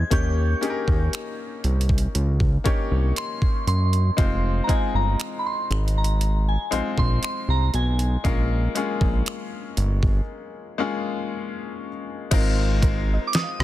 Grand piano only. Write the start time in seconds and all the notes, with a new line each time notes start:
Already playing: G#3 C4 D#4 G4 C5
0.10 A#3 C#4 D#4 G4 C#5
0.61 A#3 C#4 D#4 G4 G#4
0.70 A#4
2.64 A#3 C#4 D#4 G4 C#5
4.17 G#3 C4 D#4 F4 C5
4.67 G#3 C4 D#4 F4 D#5
6.71 G#3 C4 D#4 F4 C5
8.24 G#3 A#3 C#4 F4 A#4
8.75 G#3 A#3 C#4 F4 G#4
10.78 G#3 A#3 C#4 F4 G#4
12.31 G#3 C4 D#4 F4 A#4